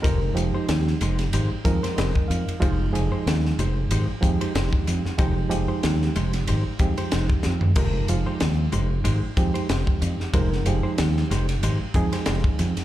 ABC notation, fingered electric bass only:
X:1
M:4/4
L:1/16
Q:"Swing 16ths" 1/4=93
K:Fm
V:1 name="Fingered electric bass" clef=bass
F,,,2 F,,, z E,,2 F,,,2 A,,, z F,, z F,,, z F,, z | F,,,2 F,,, z E,,2 F,,,2 A,,, z F,, z F,,, z F,, z | F,,,2 F,,, z E,,2 F,,,2 A,,, z F,, z F,,, z F,, z | F,,,2 F,,, z E,,2 F,,,2 A,,, z F,, z F,,, z F,, z |
F,,,2 F,,, z E,,2 F,,,2 A,,, z F,, z F,,, z F,, z |]